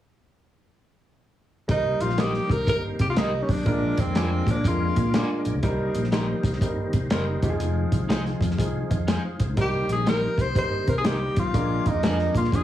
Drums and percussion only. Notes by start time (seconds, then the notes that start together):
1.69 kick, closed hi-hat
2.01 closed hi-hat
2.10 snare
2.18 snare, closed hi-hat
2.34 snare
2.50 kick, closed hi-hat
2.67 kick, closed hi-hat
2.99 kick, closed hi-hat
3.16 snare, closed hi-hat
3.49 kick, open hi-hat
3.66 kick, closed hi-hat
3.98 kick, closed hi-hat
4.15 snare, closed hi-hat
4.47 kick, closed hi-hat
4.64 kick, closed hi-hat
4.96 kick, closed hi-hat
5.14 snare, closed hi-hat
5.45 closed hi-hat
5.63 kick, closed hi-hat
5.95 closed hi-hat
6.04 snare
6.12 snare, closed hi-hat
6.43 kick, closed hi-hat
6.53 snare
6.61 kick, closed hi-hat
6.93 kick, closed hi-hat
7.10 snare, closed hi-hat
7.42 kick, closed hi-hat
7.60 closed hi-hat
7.92 kick, closed hi-hat
8.10 snare, closed hi-hat
8.26 snare
8.41 kick, closed hi-hat
8.51 snare
8.58 kick, closed hi-hat
8.91 kick, closed hi-hat
9.08 snare, closed hi-hat
9.40 kick, closed hi-hat
9.57 kick, closed hi-hat
9.89 closed hi-hat
10.07 snare, closed hi-hat
10.38 kick, closed hi-hat
10.55 kick, closed hi-hat
10.88 kick, closed hi-hat
11.04 snare, closed hi-hat
11.36 kick, closed hi-hat
11.54 kick, closed hi-hat
11.86 kick, closed hi-hat
12.03 snare, closed hi-hat
12.19 snare
12.35 kick, closed hi-hat
12.44 snare
12.52 kick, closed hi-hat